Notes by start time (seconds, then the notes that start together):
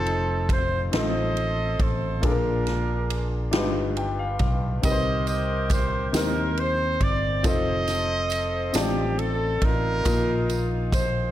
Already playing: F1 C4 D#4 F4 A4 C5
0.06 ride bell
0.49 C5, kick, ride bell
0.91 A1 C4 D#4 F4 A4 C5, snare, ride bell
0.95 A4 C5 D#5
1.37 ride bell
1.79 A1 C5, kick, ride bell
2.21 A#2 A#3 D4 F4 G#4 A4, kick, ride bell
2.26 D4 F4 A#4
2.31 A#4
2.67 snare, ride bell
3.10 ride bell
3.51 G1 G2 D4 D#4 F4 G4 B4, snare, ride bell
3.97 G5, ride bell
4.19 F5
4.39 B1 F5, kick, ride bell
4.82 C2 C3 C4 D#4 G4 A#4 B4 D#5, kick, ride bell, tambourine
4.86 G4
4.92 C5
5.27 D#5, ride bell, tambourine
5.70 C5, kick, ride bell, tambourine
6.12 D#2 C4 D#4 G4 A#4 C5, snare, ride bell, tambourine
6.57 C5, ride bell
7.01 G1 D5, kick, ride bell
7.43 F1 C4 D#4 F4 A4 C5 D#5, kick, ride bell, tambourine
7.47 A4 C5
7.88 snare, ride bell, tambourine
8.30 ride bell, tambourine
8.73 A1 C4 D#4 F4 G4 D5 A5, snare, ride bell, tambourine
9.19 A4, ride bell
9.62 A1 D#4 F4 A#4, kick, ride bell
10.04 A#1 A#2 A#3 D#4 F4 A#4 D#5, kick, ride bell, tambourine
10.49 ride bell, tambourine
10.92 C5, kick, ride bell, tambourine